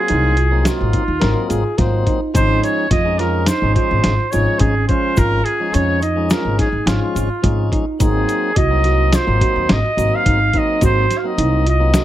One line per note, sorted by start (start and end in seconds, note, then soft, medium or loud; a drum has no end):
0.00 0.37 F#3 medium
0.00 0.37 A#3 medium
0.00 0.37 C4 medium
0.00 0.38 F4 medium
0.00 0.66 G#4 loud
0.08 0.66 C2 medium
0.08 0.33 D#4 medium
0.08 closed hi-hat medium
0.37 0.62 F4 medium
0.37 closed hi-hat medium
0.51 1.03 F#3 medium
0.51 1.04 A#3 medium
0.51 1.04 C4 medium
0.51 1.04 D#4 medium
0.65 1.75 F4 medium
0.65 0.90 F#4 medium
0.65 snare loud
0.65 closed hi-hat medium
0.65 shaker medium
0.81 0.91 G#1 medium
0.93 1.43 D#4 medium
0.93 kick medium
0.93 closed hi-hat medium
1.08 1.19 D#2 medium
1.20 1.33 G#1 medium
1.20 1.63 F#3 medium
1.20 1.64 A#3 medium
1.20 1.64 C4 medium
1.20 1.64 D#4 medium
1.20 1.51 A#4 medium
1.20 snare loud
1.20 closed hi-hat medium
1.49 1.61 G#1 medium
1.49 1.75 F4 medium
1.49 1.80 G#4 medium
1.49 closed hi-hat medium
1.49 shaker soft
1.77 2.01 G#1 medium
1.77 2.20 F#3 medium
1.77 2.20 A#3 medium
1.77 2.21 C4 medium
1.77 2.21 D#4 medium
1.77 2.03 F4 medium
1.77 2.21 C5 medium
1.77 kick medium
1.77 snare soft
1.77 closed hi-hat medium
2.06 2.31 D#4 medium
2.06 kick medium
2.06 closed hi-hat medium
2.34 2.57 G#1 loud
2.34 2.87 F3 medium
2.34 2.87 G#3 medium
2.34 2.87 C#4 medium
2.34 2.87 D#4 medium
2.34 2.84 D#4 medium
2.34 2.62 C5 loud
2.34 kick loud
2.34 closed hi-hat medium
2.34 shaker medium
2.64 2.90 C#5 loud
2.64 closed hi-hat medium
2.64 shaker soft
2.91 3.47 F2 medium
2.91 3.16 F4 medium
2.91 3.21 D#5 loud
2.91 kick loud
2.91 snare soft
2.91 closed hi-hat medium
3.05 3.47 F3 medium
3.05 3.47 G#3 medium
3.05 3.47 C#4 medium
3.05 3.48 D#4 medium
3.19 3.44 F4 medium
3.19 3.49 A#4 medium
3.19 snare soft
3.19 closed hi-hat medium
3.46 3.72 D#4 medium
3.46 3.74 C5 medium
3.46 snare loud
3.46 closed hi-hat medium
3.46 shaker medium
3.62 3.73 G#1 medium
3.62 4.14 F3 medium
3.62 4.15 G#3 medium
3.62 4.15 C#4 medium
3.62 4.15 D#4 medium
3.75 4.25 F4 medium
3.75 4.33 C5 medium
3.75 kick medium
3.75 closed hi-hat medium
3.91 4.02 G#1 medium
4.04 4.16 G#1 medium
4.04 snare medium
4.04 closed hi-hat medium
4.31 4.45 G#1 medium
4.31 4.74 F3 medium
4.31 4.75 G#3 medium
4.31 4.75 C#4 medium
4.31 4.75 D#4 medium
4.31 4.58 F4 medium
4.31 4.62 C#5 medium
4.31 closed hi-hat medium
4.31 shaker soft
4.59 4.83 G#1 medium
4.59 4.85 C#4 medium
4.59 4.88 G#4 medium
4.59 kick loud
4.59 closed hi-hat medium
4.88 5.42 F3 medium
4.88 5.42 G#3 medium
4.88 5.14 C#4 medium
4.88 5.42 C#4 medium
4.88 5.42 F4 medium
4.88 5.20 C5 medium
4.88 kick medium
4.88 closed hi-hat soft
5.17 5.40 G#1 loud
5.17 5.66 F4 medium
5.17 5.46 A#4 loud
5.17 kick loud
5.17 closed hi-hat medium
5.17 shaker soft
5.45 5.76 G#4 medium
5.45 closed hi-hat medium
5.60 6.02 F3 medium
5.60 6.02 G#3 medium
5.60 6.02 C#4 medium
5.60 6.03 D#4 medium
5.74 6.31 F2 medium
5.74 5.99 C#4 medium
5.74 6.01 C#5 medium
5.74 closed hi-hat medium
5.74 shaker soft
6.02 6.27 D#4 medium
6.02 6.33 D#5 medium
6.02 closed hi-hat medium
6.02 shaker soft
6.16 6.69 F3 medium
6.16 6.69 G#3 medium
6.16 6.69 C#4 medium
6.16 6.69 D#4 medium
6.30 6.55 F4 medium
6.30 6.58 A#4 medium
6.30 snare loud
6.30 closed hi-hat medium
6.30 shaker medium
6.45 6.56 G#1 medium
6.59 7.08 D#4 medium
6.59 6.89 G#4 medium
6.59 kick medium
6.59 snare soft
6.59 closed hi-hat medium
6.72 6.84 G#1 medium
6.86 6.98 G#1 medium
6.86 7.29 F3 medium
6.86 7.29 G#3 medium
6.86 7.29 C#4 medium
6.86 7.72 F4 medium
6.86 7.30 F4 medium
6.86 snare loud
6.86 closed hi-hat medium
6.86 shaker soft
7.15 7.27 G#1 medium
7.15 7.40 F4 medium
7.15 closed hi-hat medium
7.15 shaker soft
7.42 7.66 G#1 medium
7.42 7.85 F3 medium
7.42 7.85 G#3 medium
7.42 7.85 C#4 medium
7.42 7.86 D#4 medium
7.42 7.68 F4 medium
7.42 kick loud
7.42 closed hi-hat medium
7.72 7.97 D#4 medium
7.72 kick medium
7.72 closed hi-hat medium
7.99 8.23 G#1 medium
7.99 8.52 F#3 medium
7.99 8.53 A#3 medium
7.99 8.53 C4 medium
7.99 8.49 D#4 medium
7.99 8.53 D#4 medium
7.99 8.58 G#4 medium
7.99 kick loud
7.99 closed hi-hat medium
7.99 shaker medium
8.29 closed hi-hat medium
8.29 shaker soft
8.56 9.13 C2 medium
8.56 8.81 F#4 medium
8.56 9.16 D#5 loud
8.56 kick loud
8.56 closed hi-hat medium
8.70 9.12 F#3 medium
8.70 9.12 A#3 medium
8.70 9.12 C4 medium
8.70 9.13 D#4 medium
8.84 9.09 F#4 medium
8.84 snare soft
8.84 closed hi-hat medium
9.13 9.38 F4 medium
9.13 9.74 C5 medium
9.13 snare loud
9.13 closed hi-hat medium
9.13 shaker medium
9.26 9.38 G#1 medium
9.26 9.79 F#3 medium
9.26 9.79 A#3 medium
9.26 9.79 C4 medium
9.26 9.80 D#4 medium
9.41 9.90 F#4 medium
9.41 kick medium
9.41 closed hi-hat medium
9.56 9.67 D#2 medium
9.69 9.81 G#1 medium
9.69 10.17 D#5 medium
9.69 snare loud
9.69 closed hi-hat medium
9.96 10.08 G#1 medium
9.96 10.39 F#3 medium
9.96 10.39 A#3 medium
9.96 10.39 C4 medium
9.96 10.40 D#4 medium
9.96 10.22 F#4 medium
9.96 closed hi-hat medium
9.96 shaker soft
10.15 10.59 F5 loud
10.26 10.48 G#1 medium
10.26 10.50 D#4 medium
10.26 kick medium
10.26 closed hi-hat medium
10.53 11.06 F#3 medium
10.53 11.06 A#3 medium
10.53 11.07 C4 medium
10.53 10.78 D#4 medium
10.53 11.07 D#4 medium
10.53 kick medium
10.53 closed hi-hat medium
10.58 10.84 D#5 medium
10.81 11.04 G#1 loud
10.81 11.31 F#4 medium
10.81 11.19 C5 loud
10.81 kick loud
10.81 closed hi-hat medium
10.81 shaker medium
11.11 snare soft
11.11 closed hi-hat medium
11.11 shaker soft
11.18 11.28 F5 medium
11.24 11.66 F#3 medium
11.24 11.66 A#3 medium
11.24 11.66 C4 medium
11.24 11.67 D#4 medium
11.24 11.68 D#5 loud
11.38 11.94 C2 medium
11.38 11.62 D#4 medium
11.38 closed hi-hat medium
11.66 11.91 F4 medium
11.66 12.04 D#5 medium
11.66 closed hi-hat medium
11.79 12.04 F#3 medium
11.79 12.04 A#3 medium
11.79 12.04 C4 medium
11.79 12.04 D#4 medium
11.94 12.04 F#4 medium
11.94 snare loud
11.94 closed hi-hat medium
11.94 shaker medium